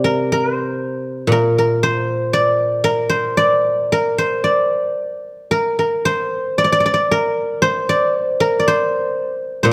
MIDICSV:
0, 0, Header, 1, 2, 480
1, 0, Start_track
1, 0, Tempo, 1016949
1, 616, Time_signature, 2, 2, 24, 8
1, 1094, Tempo, 1063830
1, 3014, Tempo, 1036269
1, 4476, End_track
2, 0, Start_track
2, 0, Title_t, "Guzheng"
2, 0, Program_c, 0, 107
2, 0, Note_on_c, 0, 48, 53
2, 0, Note_on_c, 0, 72, 82
2, 0, Note_on_c, 0, 74, 75
2, 20, Note_on_c, 0, 70, 73
2, 149, Note_off_c, 0, 72, 0
2, 151, Note_off_c, 0, 70, 0
2, 151, Note_on_c, 0, 70, 78
2, 250, Note_off_c, 0, 70, 0
2, 250, Note_on_c, 0, 72, 78
2, 601, Note_on_c, 0, 46, 63
2, 611, Note_off_c, 0, 48, 0
2, 622, Note_on_c, 0, 70, 76
2, 649, Note_off_c, 0, 74, 0
2, 746, Note_off_c, 0, 70, 0
2, 748, Note_on_c, 0, 70, 67
2, 862, Note_off_c, 0, 72, 0
2, 864, Note_on_c, 0, 72, 92
2, 1101, Note_on_c, 0, 74, 79
2, 1327, Note_off_c, 0, 70, 0
2, 1329, Note_on_c, 0, 70, 81
2, 1443, Note_off_c, 0, 72, 0
2, 1445, Note_on_c, 0, 72, 80
2, 1568, Note_off_c, 0, 74, 0
2, 1570, Note_on_c, 0, 74, 82
2, 1816, Note_off_c, 0, 70, 0
2, 1818, Note_on_c, 0, 70, 79
2, 1934, Note_off_c, 0, 72, 0
2, 1936, Note_on_c, 0, 72, 73
2, 2043, Note_off_c, 0, 46, 0
2, 2049, Note_off_c, 0, 74, 0
2, 2051, Note_on_c, 0, 74, 68
2, 2533, Note_off_c, 0, 70, 0
2, 2535, Note_on_c, 0, 70, 75
2, 2658, Note_off_c, 0, 70, 0
2, 2660, Note_on_c, 0, 70, 60
2, 2777, Note_off_c, 0, 72, 0
2, 2779, Note_on_c, 0, 72, 80
2, 2884, Note_off_c, 0, 74, 0
2, 3018, Note_on_c, 0, 74, 74
2, 3045, Note_off_c, 0, 74, 0
2, 3047, Note_on_c, 0, 74, 63
2, 3082, Note_off_c, 0, 74, 0
2, 3084, Note_on_c, 0, 74, 69
2, 3119, Note_off_c, 0, 74, 0
2, 3121, Note_on_c, 0, 74, 56
2, 3143, Note_off_c, 0, 74, 0
2, 3145, Note_on_c, 0, 74, 69
2, 3181, Note_off_c, 0, 74, 0
2, 3183, Note_on_c, 0, 74, 63
2, 3263, Note_off_c, 0, 70, 0
2, 3265, Note_on_c, 0, 70, 76
2, 3497, Note_off_c, 0, 72, 0
2, 3499, Note_on_c, 0, 72, 92
2, 3623, Note_off_c, 0, 74, 0
2, 3625, Note_on_c, 0, 74, 80
2, 3764, Note_off_c, 0, 72, 0
2, 3764, Note_off_c, 0, 74, 0
2, 3764, Note_on_c, 0, 72, 80
2, 3860, Note_off_c, 0, 70, 0
2, 3862, Note_on_c, 0, 70, 84
2, 3949, Note_off_c, 0, 72, 0
2, 3951, Note_on_c, 0, 74, 57
2, 3988, Note_on_c, 0, 72, 88
2, 4429, Note_off_c, 0, 72, 0
2, 4431, Note_on_c, 0, 72, 78
2, 4438, Note_on_c, 0, 46, 64
2, 4467, Note_off_c, 0, 70, 0
2, 4476, Note_off_c, 0, 46, 0
2, 4476, Note_off_c, 0, 72, 0
2, 4476, Note_off_c, 0, 74, 0
2, 4476, End_track
0, 0, End_of_file